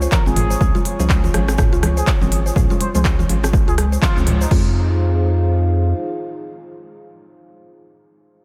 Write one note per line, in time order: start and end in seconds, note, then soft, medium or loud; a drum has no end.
0.00 4.47 F4 medium
0.00 0.11 C5 medium
0.00 4.47 C#5 medium
0.00 4.47 G#5 medium
0.00 4.47 C#6 loud
0.00 shaker medium
0.11 0.24 A#4 loud
0.11 kick loud
0.11 clap loud
0.11 low conga medium
0.11 shaker medium
0.26 0.56 G#1 medium
0.26 0.38 F3 medium
0.26 0.38 G#3 medium
0.26 0.35 C4 medium
0.26 0.37 C#4 medium
0.26 0.38 F4 medium
0.26 0.37 G#4 medium
0.26 0.75 G#4 loud
0.26 shaker soft
0.36 mid tom medium
0.36 open hi-hat medium
0.36 high conga medium
0.36 low conga medium
0.50 0.56 C5 medium
0.50 shaker medium
0.60 0.71 C#2 loud
0.60 0.76 F3 loud
0.60 0.76 G#3 loud
0.60 0.76 C#4 loud
0.60 0.76 F4 loud
0.60 0.76 G#4 loud
0.60 kick loud
0.60 shaker medium
0.75 0.84 F4 loud
0.75 high conga medium
0.75 shaker soft
0.85 open hi-hat medium
0.85 high conga medium
0.99 1.29 C#2 medium
0.99 1.31 F3 loud
0.99 1.31 G#3 medium
0.99 1.31 C#4 medium
0.99 1.31 F4 medium
0.99 1.31 G#4 loud
0.99 1.08 C5 medium
0.99 high conga loud
0.99 shaker medium
1.10 kick loud
1.10 clap loud
1.10 shaker medium
1.24 1.33 F4 medium
1.24 low conga medium
1.24 shaker soft
1.34 1.74 G#1 loud
1.34 1.49 F3 medium
1.34 1.49 G#3 medium
1.34 1.49 C#4 medium
1.34 1.49 F4 medium
1.34 1.49 G#4 medium
1.34 cross-stick medium
1.34 open hi-hat medium
1.48 1.57 C4 medium
1.48 cross-stick medium
1.48 shaker medium
1.58 kick loud
1.58 cross-stick loud
1.58 mid tom loud
1.58 shaker medium
1.73 2.02 C#2 medium
1.73 1.82 F4 loud
1.73 shaker soft
1.83 cross-stick medium
1.83 open hi-hat medium
1.83 high conga medium
1.83 low conga medium
1.97 2.11 G#4 loud
1.97 2.06 C5 medium
1.97 shaker medium
2.07 kick loud
2.07 clap loud
2.07 shaker medium
2.21 2.51 G#1 loud
2.21 2.33 F3 medium
2.21 2.33 G#3 medium
2.21 2.30 C4 medium
2.21 2.33 C#4 medium
2.21 2.33 F4 medium
2.21 2.33 G#4 medium
2.21 high conga loud
2.21 low conga loud
2.21 shaker soft
2.32 2.41 G#4 medium
2.32 open hi-hat medium
2.46 2.53 G#4 medium
2.46 2.51 C5 medium
2.46 shaker medium
2.56 2.66 C#2 loud
2.56 2.71 F3 loud
2.56 2.71 G#3 medium
2.56 2.71 C#4 medium
2.56 2.71 F4 medium
2.56 2.71 G#4 loud
2.56 kick loud
2.56 mid tom medium
2.56 shaker medium
2.70 2.79 F4 loud
2.70 high conga loud
2.70 shaker soft
2.80 2.90 C5 medium
2.80 open hi-hat loud
2.80 high conga medium
2.95 3.24 C#2 loud
2.95 3.27 F3 loud
2.95 3.27 G#3 medium
2.95 3.27 C#4 medium
2.95 3.27 F4 medium
2.95 3.27 G#4 loud
2.95 3.04 C5 medium
2.95 3.01 C5 medium
2.95 high conga loud
2.95 shaker medium
3.05 kick loud
3.05 clap loud
3.05 shaker medium
3.19 3.28 F4 medium
3.19 low conga medium
3.19 shaker soft
3.29 3.61 G#1 loud
3.29 3.44 F3 medium
3.29 3.44 G#3 medium
3.29 3.44 C#4 medium
3.29 3.44 F4 medium
3.29 3.44 G#4 medium
3.29 open hi-hat medium
3.44 3.52 C4 medium
3.44 cross-stick medium
3.44 shaker medium
3.53 kick loud
3.53 high conga medium
3.53 shaker medium
3.68 3.97 C#2 loud
3.68 3.77 F4 loud
3.68 3.74 G#4 medium
3.68 shaker soft
3.78 3.87 G#4 medium
3.78 cross-stick medium
3.78 open hi-hat medium
3.78 high conga medium
3.92 4.01 C5 medium
3.92 shaker medium
4.02 4.19 F4 medium
4.02 kick loud
4.02 clap loud
4.02 low conga medium
4.02 shaker medium
4.17 4.46 C#2 medium
4.17 4.28 F3 medium
4.17 4.28 G#3 medium
4.17 4.26 C4 medium
4.17 4.28 C#4 medium
4.17 4.28 F4 medium
4.17 4.28 G#4 medium
4.17 shaker soft
4.27 mid tom medium
4.27 open hi-hat medium
4.27 high conga medium
4.27 low conga loud
4.41 4.51 D#4 medium
4.41 4.46 C5 medium
4.41 shaker medium
4.51 5.93 F2 loud
4.51 7.63 G#3 medium
4.51 7.63 C4 medium
4.51 7.63 D#4 medium
4.51 7.64 D#4 medium
4.51 4.74 F4 medium
4.51 7.63 F4 medium
4.51 7.64 F4 medium
4.51 7.63 G#4 loud
4.51 7.64 G#4 medium
4.51 7.64 C5 medium
4.51 7.63 F5 medium
4.51 kick loud
4.51 crash medium